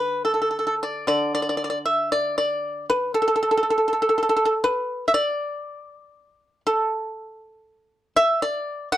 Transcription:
Already playing: D3 B4 D5
0.25 A4
0.34 A4
0.42 A4
0.51 A4
0.59 A4
0.67 A4
0.83 D5
1.07 D3 D5
1.35 D5
1.42 D5
1.49 D5
1.57 D5
1.64 D5
1.70 D5
1.85 E5
2.12 D5
2.38 D5
2.90 B4
3.14 A4
3.22 A4
3.28 A4
3.36 A4
3.43 A4
3.51 A4
3.57 A4
3.63 A4
3.70 A4
3.78 A4
3.88 A4
3.93 A4
4.02 A4
4.09 A4
4.18 A4
4.23 A4
4.29 A4
4.37 A4
4.45 A4
4.64 B4
5.08 E5
5.14 D5
6.67 A4
8.16 E5
8.42 D5
8.92 F#5

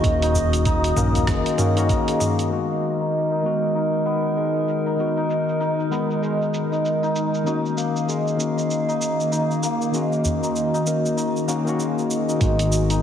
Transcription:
Already playing: D#3 G#3 A#3 C#4 D#4 F#4 D#5
0.02 D#1 D#3 A#3 C#4 F#4 D#6, kick, closed hi-hat, cabasa
0.22 D#4, closed hi-hat, cabasa
0.34 udu, cabasa
0.53 closed hi-hat, cabasa
0.65 D#4, kick, closed hi-hat, cabasa
0.84 closed hi-hat, cabasa
0.96 A#1 D#3 A#3 C#4 A#4, mid tom, cabasa
1.15 closed hi-hat, udu, cabasa
1.27 F#1 G#3, kick, cross-stick, closed hi-hat, cabasa
1.46 closed hi-hat, cabasa
1.57 D#3 A#3 C#4 F#4, mid tom, cabasa
1.75 D#3 A#3 C#4 D#4 F#4, closed hi-hat, cabasa
1.89 A#3, kick, closed hi-hat, cabasa
2.08 G#3, closed hi-hat, cabasa
2.20 mid tom, cabasa
2.39 closed hi-hat, cabasa
2.49 D#3 G#3 B3 D#4 A#4
2.53 F#4
2.70 cabasa
2.83 cabasa
3.01 D#4, cabasa
3.13 cabasa
3.31 D#4, cabasa
3.42 D#3 G#3 B3, cabasa
3.46 F#4
3.63 cabasa
3.75 D#4, cabasa
3.94 cabasa
4.05 B3, cabasa
4.24 cabasa
4.37 G#3, cabasa
4.55 cabasa
4.68 cabasa
4.86 D#4, cabasa
4.96 D#3 G#3 B3 F#4, cabasa
5.17 D#4, cabasa
5.30 cabasa
5.49 cabasa
5.60 D#4, cabasa
5.80 cabasa
5.90 D#3 G#3 B3 A#4, cabasa
6.11 cabasa
6.22 G#3, cabasa
6.42 cabasa
6.54 cabasa
6.72 D#4, cabasa
6.85 cabasa
7.03 D#4, cabasa
7.16 cabasa
7.34 cabasa
7.44 D#3 A#3 C#4 D#4 F#4 F5, cabasa
7.65 cabasa
7.77 A#3, cabasa
7.96 cabasa
8.08 G#3, cabasa
8.27 cabasa
8.37 D#3 A#3 C#4 F#4, cabasa
8.57 D#4, cabasa
8.70 cabasa
8.89 D#4, cabasa
9.02 cabasa
9.20 cabasa
9.32 D#4, cabasa
9.51 cabasa
9.63 A#3, cabasa
9.82 cabasa
9.92 D#3 G#3 A#3 C#4 F#4, cabasa
10.12 cabasa
10.25 udu, cabasa
10.43 D#4, cabasa
10.56 cabasa
10.74 D#4, cabasa
10.85 D#3 A#3 C#4 A#4, cabasa
11.06 cabasa
11.17 D#4, cabasa
11.36 cabasa
11.47 D#3 A#3 C#4 F#4, cabasa
11.65 D#3 A#3 C#4, cabasa
11.69 F#4
11.79 G#3, cabasa
11.98 cabasa
12.11 cabasa
12.28 D#4, cabasa
12.39 G#1 D#3 G#3 B3 F#4 G#5, kick, closed hi-hat, cabasa
12.59 closed hi-hat, cabasa
12.72 cabasa
12.90 D#4, closed hi-hat, cabasa

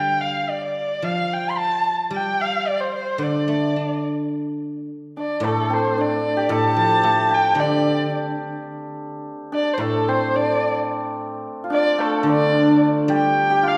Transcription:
Already playing: D3 G3 G5
0.21 F5
0.49 D5
0.63 D5
1.02 F3 F5
1.33 G5
1.50 C6
1.57 A5
2.10 G3
2.15 G5
2.41 F5
2.67 D5
2.80 C5
2.94 C5
3.18 D3
3.23 D5
3.48 A3
3.76 D4
5.17 D4 D5
5.40 A2 A3
5.46 A4
5.70 C4 C5
5.98 D4 D5
6.37 G4
6.49 A2 A4
6.53 A5
6.76 F3
7.03 A3 A4
7.31 G4 G5
7.55 D3 D4
7.60 D5
9.52 D4 D5
9.74 C5
9.78 A2 A3 A4
10.08 C4 C5
10.35 D4 D5
11.64 F4
11.70 D4 D5
11.98 A3 A4
12.23 D3 D4
12.32 D4 D5
12.40 D4
12.50 D4
12.55 D4
12.63 D4
12.70 D4
13.08 G3 G4
13.16 G5
13.50 G4
13.63 F4
13.68 F5

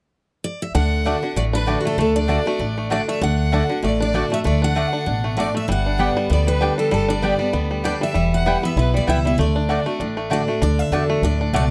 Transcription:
0.44 D5
0.62 E5
0.75 D2 D3 D4 F#5
1.04 D3 A3 D4 F#4 D5 A5
1.22 D3 D4 F#4
1.36 A1 A2 A3 D5
1.53 D4 B4
1.66 D3 A3 D4 F#4 D5 A5
1.80 F#4
1.85 A3 A4
1.98 D2 D3 A3 A4
2.16 D4 D5
2.28 D3 A3 D4 F#4 D5 A5
2.46 A3 D4 F#4
2.59 A1 A2 D4
2.78 A3
2.90 D3 A3 D4 F#4 D5 A5
3.08 A3 E5
3.21 D2 D3 D4 F#5
3.52 D3 A3 D4 F#4 D5 A5
3.69 D3 D4 F#4
3.83 A1 A2 A3 D5
4.00 D4 D5
4.13 D3 A3 D4 F#4 D5 A5
4.30 A3 D4 F#4 E5
4.44 D2 D3 A3 D5
4.62 D4 F#5
4.75 D3 A3 D4 F#4 D5 A5
4.93 D4
5.06 A1 B2 D4
5.24 A3
5.37 A2 A3 D4 F#4 D5 A5
5.55 A3 E5
5.68 G1 G2 G3 F#5
5.86 D4
5.98 D3 G3 B3 G4 D5 G5
6.17 G3
6.30 D2 D3 B3 D5
6.47 G3 B4
6.61 D3 G3 B3 D4 G4 D5 G5
6.78 G3 A4
6.91 G1 G2 G3 A4
7.08 D4 D5
7.22 D3 G3 B3 G4 D5 G5
7.39 G3 B3 G4
7.53 D2 D3 B3
7.71 G3
7.84 D3 G3 B3 D4 G4 D5 G5
8.01 G3 E5
8.14 E1 E2 G3
8.34 F#5
8.46 E3 G3 B3 E4 B4 G5
8.62 B3 E4 E5
8.76 B1 B2 E4 B4
8.94 G3 D5
9.07 C#2 E3 G3 B3 E4 B4 E5 G5
9.25 G3 B3 E4 E5
9.38 D2 D3 A3 D5
9.56 D4
9.69 D3 A3 D4 F#4 D5 A5
9.86 A3 D4 F#4
10.00 A1 A2 D4
10.17 A3
10.30 D3 A3 D4 F#4 D5 A5
10.47 A3 D4 F#4
10.62 D2 D3 D4 D5
10.79 E5
10.91 E2 D3 A3 D4 F#4 D5 A5
11.10 A3
11.22 D2 A2 D4 D5
11.41 D4
11.53 C#2 B2 A3 F#4 D5 A5

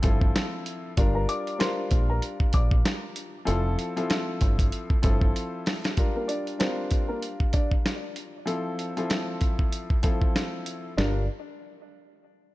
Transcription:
0.02 G1 F3 C4 E4 A4, kick, closed hi-hat
0.21 kick
0.36 snare, closed hi-hat
0.66 closed hi-hat
0.97 G1 G3 D4 F4 A#4, kick, closed hi-hat
1.15 A#4 A#5
1.29 D5 D6, closed hi-hat
1.47 closed hi-hat
1.58 G3 D4 F4 A#4 C5 C6, snare, closed hi-hat
1.91 A#1, kick, closed hi-hat
2.10 A#4 A#5
2.22 closed hi-hat
2.40 kick
2.53 A#1 D5 D6, kick, closed hi-hat
2.71 kick
2.85 snare, closed hi-hat
3.16 closed hi-hat
3.45 F1 F3 C4 E4 A4, closed hi-hat
3.79 closed hi-hat
3.96 F3 C4 E4 A4, closed hi-hat
4.10 snare, closed hi-hat
4.41 G1, kick, closed hi-hat
4.59 kick, closed hi-hat
4.72 closed hi-hat
4.90 kick
5.02 G1 F3 C4 E4 A4, kick, closed hi-hat
5.21 kick
5.36 closed hi-hat
5.66 snare, open hi-hat
5.84 snare, closed hi-hat
5.97 G3 D4 F4 A#4, kick, closed hi-hat
6.16 A#3 A#4
6.28 D4 D5, closed hi-hat
6.47 closed hi-hat
6.59 G3 C4 D4 F4 A#4 C5, snare, closed hi-hat
6.91 kick, closed hi-hat
7.08 A#3 A#4
7.22 closed hi-hat
7.40 kick
7.53 D4 D5, kick, closed hi-hat
7.71 kick
7.86 snare, closed hi-hat
8.16 closed hi-hat
8.46 F3 C4 E4 A4, closed hi-hat
8.79 closed hi-hat
8.97 F3 C4 E4 A4, closed hi-hat
9.10 snare, closed hi-hat
9.41 kick, closed hi-hat
9.59 kick
9.72 closed hi-hat
9.90 kick
10.03 F3 C4 E4 A4, kick, closed hi-hat
10.22 kick
10.36 snare, closed hi-hat
10.66 closed hi-hat
10.97 G1 G3 D4 F4 A#4, snare

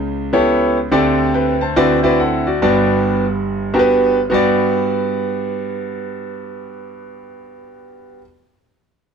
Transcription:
Already playing: C#2 C#3
0.33 B3 E4 G4 A4 C#5
0.91 D2 D3 C4 D4 G4 A4 D5
1.34 B4 G5
1.61 C5 A5
1.76 D2 D3 C4 E4 F#4 B4 D5
2.03 C4 E4 F#4 B4 D5
2.20 A4 F#5
2.47 F#4 D5
2.62 G1 G2 B3 D4 F#4 G4 D5
3.74 B3 D4 F#4 G4 A#4
3.79 B4
4.30 G2 B3 F#4 G4
4.34 D5

